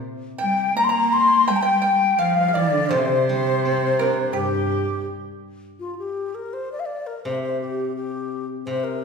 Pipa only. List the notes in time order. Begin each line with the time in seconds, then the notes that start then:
0.38 G5
0.77 A#5
0.89 A#5
1.26 G5
1.48 G5
1.63 G5
1.82 G5
2.19 F5
2.48 F5
2.55 D5
2.90 C5
3.99 A#4
4.33 G4